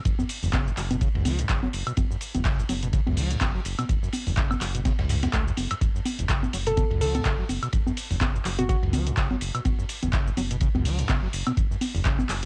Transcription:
0.05 F#1 F#2, kick, closed hi-hat, ride, shaker
0.19 F#2, high conga, shaker
0.29 open hi-hat, ride, shaker
0.43 F#1 E2, open hi-hat, shaker
0.53 C#3, kick, snare, clap, closed hi-hat, ride, high conga, shaker
0.67 F#2, shaker
0.77 F#1 F#3, clap, open hi-hat, ride, shaker
0.91 B2, closed hi-hat, high conga, shaker
1.01 C#3, kick, closed hi-hat, ride, shaker
1.15 C#2 F#2, ride
1.25 F#3, open hi-hat, ride, high conga, shaker
1.39 F#2, closed hi-hat, shaker
1.49 F#1 C#3, kick, snare, clap, closed hi-hat, ride, shaker
1.63 F#3, high conga
1.73 F#1, open hi-hat, ride, shaker
1.87 B2, closed hi-hat, high woodblock, shaker
1.97 F#1 F#2, kick, closed hi-hat, ride, high conga, shaker
2.11 F#2, shaker
2.21 open hi-hat, ride, shaker
2.35 F#1 E2, closed hi-hat, high conga, shaker
2.45 C#3, kick, snare, clap, closed hi-hat, ride, shaker
2.59 F#2, shaker
2.69 F#1 F#3, open hi-hat, ride, high conga, shaker
2.83 B2, closed hi-hat, ride, shaker
2.93 C#3, kick, closed hi-hat, ride, shaker
3.07 C#2 F#2, ride, high conga
3.17 F#3, open hi-hat, shaker
3.31 F#2, closed hi-hat, shaker
3.41 F#1 C#3, kick, snare, clap, closed hi-hat, ride, high conga, shaker
3.55 F#3
3.65 F#1, open hi-hat, ride, shaker
3.79 B2, closed hi-hat, high conga, high woodblock, shaker
3.89 F#1 F#2, kick, closed hi-hat, ride, shaker
4.03 F#2, shaker
4.12 open hi-hat, ride, high conga, shaker
4.27 F#1 E2, open hi-hat, shaker
4.37 C#3, kick, snare, clap, closed hi-hat, ride, shaker
4.51 F#2, high conga, high woodblock, shaker
4.61 F#1 F#3, clap, open hi-hat, ride, shaker
4.75 B2, closed hi-hat, shaker
4.85 C#3, kick, snare, closed hi-hat, ride, high conga, shaker
4.99 C#2 F#2, snare, ride
5.09 G2, snare, open hi-hat, ride, shaker
5.23 F#2, snare, closed hi-hat, ride, high conga, shaker
5.33 C#2 A3, kick, clap, closed hi-hat, ride, shaker
5.47 F#2, shaker
5.57 F#1, open hi-hat, ride, high conga, shaker
5.70 F#2, closed hi-hat, ride, high woodblock, shaker
5.81 F#1 F#2, kick, closed hi-hat, ride, shaker
5.95 F#2, shaker
6.05 open hi-hat, ride, high conga, shaker
6.19 F#1 E2, closed hi-hat, shaker
6.28 C#3, kick, snare, clap, closed hi-hat, ride, shaker
6.43 F#2, high conga, shaker
6.53 F#1 F#3, open hi-hat, ride, shaker
6.66 B2 A4, closed hi-hat, ride, shaker
6.77 C#3, kick, closed hi-hat, ride, high conga, shaker
6.91 C#2 F#2, ride
7.01 F#3 A4, open hi-hat, shaker
7.15 F#2 A4, closed hi-hat, high conga, shaker
7.25 F#1 C#3, kick, snare, clap, closed hi-hat, ride, shaker
7.39 F#3
7.49 F#1, open hi-hat, ride, high conga, shaker
7.63 B2, closed hi-hat, high woodblock, shaker
7.73 F#1 F#2, kick, closed hi-hat, ride, shaker
7.87 F#2, high conga, shaker
7.97 open hi-hat, ride, shaker
8.11 F#1 E2, open hi-hat, shaker
8.21 C#3, kick, snare, clap, closed hi-hat, ride, high conga, shaker
8.35 F#2, shaker
8.45 F#1 F#3, clap, open hi-hat, ride, shaker
8.59 B2 F#4, closed hi-hat, high conga, shaker
8.69 C#3 F#4, kick, closed hi-hat, ride, shaker
8.83 C#2 F#2, ride
8.93 F#3, open hi-hat, ride, high conga, shaker
9.07 F#2, closed hi-hat, shaker
9.17 F#1 C#3, kick, snare, clap, closed hi-hat, ride, shaker
9.31 F#3, high conga
9.41 F#1, open hi-hat, ride, shaker
9.55 B2, closed hi-hat, high woodblock, shaker
9.65 F#1 F#2, kick, closed hi-hat, ride, high conga, shaker
9.79 F#2, shaker
9.89 open hi-hat, ride, shaker
10.03 F#1 E2, closed hi-hat, high conga, shaker
10.13 C#3, kick, snare, clap, closed hi-hat, ride, shaker
10.27 F#2, shaker
10.37 F#1 F#3, open hi-hat, ride, high conga, shaker
10.51 B2, closed hi-hat, ride, shaker
10.60 C#3, kick, closed hi-hat, ride, shaker
10.75 C#2 F#2, ride, high conga
10.85 F#3, open hi-hat, shaker
10.99 F#2, closed hi-hat, shaker
11.09 F#1 C#3, kick, snare, clap, closed hi-hat, ride, high conga, shaker
11.23 F#3
11.33 F#1, open hi-hat, ride, shaker
11.47 B2, closed hi-hat, high conga, high woodblock, shaker
11.57 F#1 F#2, kick, closed hi-hat, ride, shaker
11.71 F#2, shaker
11.81 open hi-hat, ride, high conga, shaker
11.95 F#1 E2, open hi-hat, shaker
12.05 C#3, kick, snare, clap, closed hi-hat, ride, shaker
12.19 F#2, high conga, shaker
12.29 F#1 F#3, clap, open hi-hat, ride, shaker

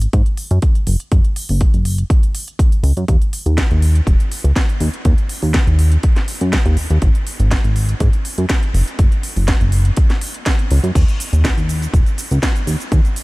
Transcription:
0.02 closed hi-hat
0.13 G#2, kick, closed hi-hat
0.26 closed hi-hat
0.37 open hi-hat
0.51 F#2, closed hi-hat
0.62 kick, closed hi-hat
0.75 closed hi-hat
0.87 F#1, open hi-hat
1.00 closed hi-hat
1.12 F#1, kick, closed hi-hat
1.25 closed hi-hat
1.36 open hi-hat
1.49 F#1, open hi-hat
1.61 kick, closed hi-hat
1.74 F#1, closed hi-hat
1.85 open hi-hat
1.98 closed hi-hat
2.10 kick, closed hi-hat
2.23 closed hi-hat
2.35 open hi-hat
2.48 closed hi-hat
2.59 kick, closed hi-hat
2.72 closed hi-hat
2.83 C#2, open hi-hat
2.97 F#2, closed hi-hat
3.08 D#2, kick, closed hi-hat
3.22 closed hi-hat
3.33 open hi-hat
3.46 D#2, closed hi-hat
3.58 kick, snare, closed hi-hat
3.71 D#2, closed hi-hat
3.82 open hi-hat
3.95 closed hi-hat
4.07 D#1, kick, closed hi-hat
4.20 closed hi-hat
4.32 open hi-hat
4.44 C#2, closed hi-hat
4.56 kick, snare, closed hi-hat
4.69 closed hi-hat
4.80 D#2, open hi-hat
4.94 closed hi-hat
5.05 D#2, kick, closed hi-hat
5.18 closed hi-hat
5.29 open hi-hat
5.42 D#2, open hi-hat
5.54 kick, snare, closed hi-hat
5.67 D#2, closed hi-hat
5.79 open hi-hat
5.92 closed hi-hat
6.03 kick, closed hi-hat
6.16 snare, closed hi-hat
6.28 open hi-hat
6.41 F#2, closed hi-hat
6.53 kick, snare, closed hi-hat
6.66 D#2, closed hi-hat
6.77 D#2, open hi-hat
6.90 D#2, closed hi-hat
7.02 G#1, kick, closed hi-hat
7.15 closed hi-hat
7.27 open hi-hat
7.40 G#1, closed hi-hat
7.51 kick, snare, closed hi-hat
7.64 G#1, closed hi-hat
7.76 open hi-hat
7.89 closed hi-hat
8.00 G#2, kick, closed hi-hat
8.13 closed hi-hat
8.25 open hi-hat
8.38 F#2, closed hi-hat
8.49 kick, snare, closed hi-hat
8.63 closed hi-hat
8.74 F#1, open hi-hat
8.88 closed hi-hat
8.99 F#1, kick, closed hi-hat
9.12 closed hi-hat
9.23 open hi-hat
9.36 F#1, open hi-hat
9.48 kick, snare, closed hi-hat
9.61 F#1, closed hi-hat
9.72 open hi-hat
9.85 closed hi-hat
9.97 kick, closed hi-hat
10.10 snare, closed hi-hat
10.21 open hi-hat
10.34 closed hi-hat
10.46 kick, snare, closed hi-hat
10.59 closed hi-hat
10.71 C#2, open hi-hat
10.84 F#2, closed hi-hat
10.95 D#2, kick, closed hi-hat, crash, shaker
11.08 closed hi-hat, shaker
11.20 open hi-hat, shaker
11.33 D#2, closed hi-hat, shaker
11.44 kick, snare, closed hi-hat, shaker
11.57 D#2, closed hi-hat, shaker
11.69 open hi-hat, shaker
11.82 closed hi-hat, shaker
11.93 D#1, kick, closed hi-hat, shaker
12.06 closed hi-hat, shaker
12.18 open hi-hat, shaker
12.31 C#2, closed hi-hat, shaker
12.43 kick, snare, closed hi-hat, shaker
12.56 closed hi-hat, shaker
12.67 D#2, open hi-hat, shaker
12.80 closed hi-hat, shaker
12.92 D#2, kick, closed hi-hat, shaker
13.05 closed hi-hat, shaker
13.16 open hi-hat, shaker

